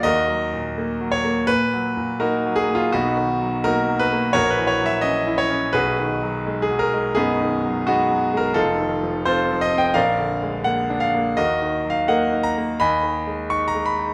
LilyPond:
<<
  \new Staff \with { instrumentName = "Grand piano" } { \time 4/4 \key ees \minor \tempo 4 = 85 <ges' bes' ees''>4. des''8 ces''4 <ees' ges' bes'>8 aes'16 f'16 | <b dis' fis'>4 <dis' fis' ais'>8 b'8 <ges' bes' des''>16 ces''16 des''16 fes''16 ees''8 des''8 | <fis' gis' b'>4~ <fis' gis' b'>16 gis'16 bes'8 <b dis' gis'>4 <b dis' fis'>8. bes'16 | <ees' f' a'>4 <f' a' c''>8 ees''16 g''16 <bes' d'' f''>4 ges''8 f''8 |
<ges' bes' ees''>8. f''16 <bes' ees'' ges''>8 bes''8 <ees'' aes'' ces'''>4 des'''16 bes''16 ces'''8 | }
  \new Staff \with { instrumentName = "Grand piano" } { \clef bass \time 4/4 \key ees \minor \tuplet 3/2 { ees,8 ges8 bes,8 bes8 ges8 bes8 bes,8 ges8 bes,8 bes8 ges8 bes8 } | \tuplet 3/2 { b,,8 dis8 fis8 ais8 fis8 ais8 bes,,8 fes8 ges8 des'8 fes'8 des'8 } | \tuplet 3/2 { b,,8 dis8 fis8 gis8 fis8 gis8 fis,8 dis8 fis8 gis8 fis8 gis8 } | \tuplet 3/2 { f,,8 ees8 f8 c'8 f8 c'8 bes,,8 d8 aes8 bes8 d'8 bes8 } |
\tuplet 3/2 { ees,8 ees8 ges8 bes8 ees'8 bes8 ees,8 ees8 aes8 ees'8 aes8 ees'8 } | }
>>